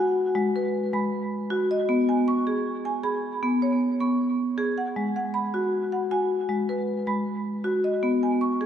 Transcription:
Already playing: F#4 F#5 G#5
0.35 G#3
0.56 B4
0.94 G#3 B5
1.50 F#4
1.71 D#5
1.89 B3
2.09 G#5
2.28 C#6
2.47 G#4
2.85 G#5
3.04 G#4 B5
3.43 B3
3.62 C#5
4.00 B3 C#6
4.58 G#4
4.78 F#5
4.96 G#3
5.16 F#5
5.34 B5
5.54 F#4
5.92 F#5
6.11 F#4 G#5
6.49 G#3
6.69 B4
7.07 G#3 B5
7.64 F#4
7.84 D#5
8.03 B3
8.23 G#5
8.41 C#6
8.61 G#4

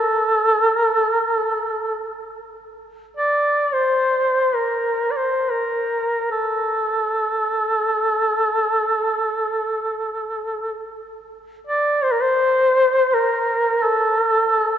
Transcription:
Already playing: A4
0.71 A#4
0.88 A4
1.16 A#4
1.33 A4
3.17 D5
3.73 C5
4.55 A#4
5.11 D5
5.17 C5
5.51 A#4
6.31 A4
11.67 D5
12.03 C5
12.12 A#4
12.21 C5
13.14 A#4
13.85 A4

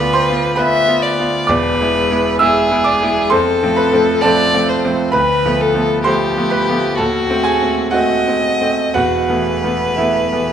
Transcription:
Already playing: D2 B4 D5 D6
0.00 B3 F4
0.13 C5 C6
0.29 B3 F4
0.56 B3 F4 B4 E5 B5
0.88 B3 F4
1.03 D5
1.19 B3 F4
1.47 E1 E2 B4 D5 D6
1.80 G#3 B3 E4
2.10 G#3 B3 E4
2.39 G#3 B3 E4 G#4 E5 E6
2.70 G#3 B3 E4
2.84 D5 D6
3.03 G#3 B3 E4
3.30 F2 A4 C5 C6
3.63 F3 A3 C4
3.76 B4 B5
3.93 F3 A3 C4
4.22 F3 A3 C4 A4 D5 A5
4.54 F3 A3 C4
4.69 C5
4.85 F3 A3 C4
5.12 D2 B4 B5
5.45 F3 A3 B3
5.61 A4
5.74 F3 A3 B3
6.04 F3 A3 B3 G4 C5 C6
6.37 F3 A3 B3
6.50 B4 B5
6.69 F3 A3 B3
6.95 D#2 F#4 A4 A5
7.30 A3 C4
7.44 G#4 G#5
7.61 A3 C4
7.91 A3 C4 F#4 D#5 F#5
8.27 A3 C4
8.61 A3 C4
8.94 E1 E2 F#4 B4 F#5
9.29 E3 A3 B3
9.64 E3 A3 B3
9.96 E3 A3 B3 E4 E5
10.32 E3 A3 B3

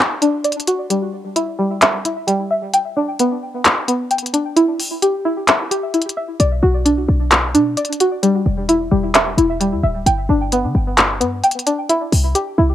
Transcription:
Already playing: D4 F#4 D5
0.22 D4, closed hi-hat
0.44 D5, closed hi-hat
0.52 closed hi-hat
0.60 closed hi-hat
0.67 F#4, closed hi-hat
0.90 G3, closed hi-hat
1.36 E4, closed hi-hat
1.59 G3
1.82 E5, clap, closed hi-hat
2.05 E4, closed hi-hat
2.27 G3, closed hi-hat
2.51 E5
2.73 G5, closed hi-hat
2.97 D4
3.19 B3, closed hi-hat
3.65 clap, closed hi-hat
3.88 B3, closed hi-hat
4.11 G5, closed hi-hat
4.18 closed hi-hat
4.26 closed hi-hat
4.34 D4, closed hi-hat
4.56 E4, closed hi-hat
4.80 open hi-hat
5.02 G4, closed hi-hat
5.25 E4
5.48 E5, clap, closed hi-hat
5.71 G4, closed hi-hat
5.94 E4, closed hi-hat
6.02 closed hi-hat
6.09 closed hi-hat
6.17 E5
6.40 B1 D5, closed hi-hat
6.63 B1 F#4
6.85 D4, closed hi-hat
6.98 C2
7.09 B1
7.31 clap, closed hi-hat
7.54 B2 D4, closed hi-hat
7.77 D5, closed hi-hat
7.85 closed hi-hat
7.93 closed hi-hat
8.00 F#4, closed hi-hat
8.23 G3, closed hi-hat
8.46 E1
8.69 E4, closed hi-hat
8.91 E1 G3
9.14 E5, clap, closed hi-hat
9.38 E1 E4, closed hi-hat
9.60 G3, closed hi-hat
9.73 E2
9.83 D1 E5
10.06 G1 G5, closed hi-hat
10.29 G1 D4
10.52 B3, closed hi-hat
10.64 D3
10.75 G1
10.98 clap, closed hi-hat
11.21 G2 B3, closed hi-hat
11.44 G5, closed hi-hat
11.51 closed hi-hat
11.59 closed hi-hat
11.66 D4, closed hi-hat
11.89 E4, closed hi-hat
12.12 C2, open hi-hat
12.35 G4, closed hi-hat
12.58 C2 E4

